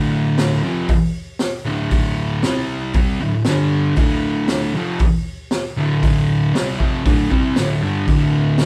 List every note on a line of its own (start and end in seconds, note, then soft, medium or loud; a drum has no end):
0.00 0.62 D2 loud
0.00 0.63 A2 loud
0.00 0.63 D3 loud
0.38 snare loud
0.38 open hi-hat medium
0.63 0.88 F2 medium
0.63 0.89 C3 medium
0.63 0.89 F3 loud
0.88 kick loud
0.88 open hi-hat medium
1.39 snare loud
1.39 open hi-hat medium
1.65 2.42 D2 medium
1.65 2.43 A2 medium
1.65 2.43 D3 medium
1.91 kick loud
1.91 open hi-hat medium
2.43 2.93 C3 medium
2.43 2.94 G3 loud
2.43 2.94 C4 medium
2.43 snare loud
2.43 open hi-hat medium
2.94 3.19 C3 medium
2.94 3.20 G3 loud
2.94 3.20 C4 loud
2.94 kick loud
2.94 open hi-hat medium
3.20 3.41 D2 medium
3.20 3.41 A2 medium
3.45 3.96 G2 loud
3.45 3.97 D3 loud
3.45 3.98 G3 loud
3.45 snare loud
3.45 open hi-hat medium
3.96 4.73 D2 medium
3.96 4.74 A2 medium
3.96 4.74 D3 loud
3.96 kick loud
3.96 open hi-hat medium
4.48 snare loud
4.48 open hi-hat medium
4.74 4.99 F2 medium
4.74 5.00 C3 loud
4.74 5.00 F3 loud
4.99 kick loud
4.99 open hi-hat medium
5.51 snare loud
5.51 open hi-hat medium
5.77 6.53 D2 medium
5.77 6.54 A2 medium
5.77 6.54 D3 loud
6.03 kick loud
6.03 open hi-hat medium
6.54 6.79 C3 medium
6.54 6.79 G3 medium
6.54 6.80 C4 loud
6.54 snare loud
6.54 open hi-hat medium
6.80 7.04 F2 medium
6.80 7.05 C3 medium
6.80 7.05 F3 loud
6.80 kick medium
7.05 7.30 D2 medium
7.05 7.31 A2 loud
7.05 7.31 D3 loud
7.05 kick loud
7.05 open hi-hat medium
7.31 7.56 C3 medium
7.31 7.56 G3 loud
7.31 7.56 C4 loud
7.31 kick medium
7.56 7.81 D2 medium
7.56 7.82 A2 loud
7.56 7.82 D3 loud
7.56 snare loud
7.56 open hi-hat medium
7.82 8.07 G2 medium
7.82 8.07 D3 medium
7.82 8.08 G3 medium
8.07 8.65 D2 medium
8.07 8.65 A2 loud
8.07 8.65 D3 loud
8.07 kick loud
8.07 open hi-hat medium
8.58 snare loud
8.58 open hi-hat medium